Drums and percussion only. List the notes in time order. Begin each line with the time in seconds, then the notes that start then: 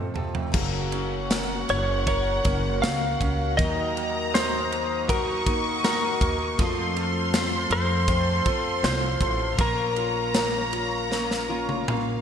0.16 floor tom
0.35 floor tom
0.54 kick, crash
0.92 ride
1.31 snare, ride
1.69 ride
2.07 kick, ride
2.45 kick, ride
2.84 snare, ride
3.21 kick, ride
3.59 kick, ride
3.97 ride
4.35 snare, ride
4.72 ride
5.09 kick, ride
5.46 kick, ride
5.84 snare, ride
6.21 kick, ride
6.59 kick, ride
6.97 ride
7.34 snare, ride
7.71 ride
8.08 kick, ride
8.46 kick, ride
8.84 snare, ride
9.21 kick, ride
9.59 kick, ride
9.96 ride
10.34 snare, ride
10.73 ride
11.12 snare
11.31 snare
11.69 high tom
11.88 mid tom